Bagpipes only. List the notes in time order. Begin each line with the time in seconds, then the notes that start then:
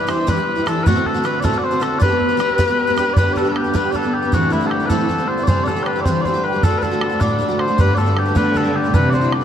Already playing: B4
0.10 C5
0.29 B4
0.67 A4
0.83 F#4 B4
1.06 A4
1.25 B4
1.40 A4 D5
1.58 D5
1.64 C5
1.82 A4
1.99 B4 D5
3.13 B4 D5
3.33 A4 D5
3.48 A4 B4
3.57 G4
3.76 B4
3.91 D5
3.96 A4
4.14 G4
4.34 F#4
4.52 E4
4.67 G4 A4
4.86 A4 B4
5.28 C5
5.44 C5 D5
5.64 A4 D5
5.83 B4 D5
6.01 C5 D5
6.21 C5 D5
6.44 B4
6.63 A4
6.78 B4
6.83 A4
7.20 D5
7.59 C5
7.80 B4
7.95 A4 D5
8.18 G4
8.36 B4
8.57 A4
8.76 G4
8.94 B4
9.10 C5 D5
9.33 D5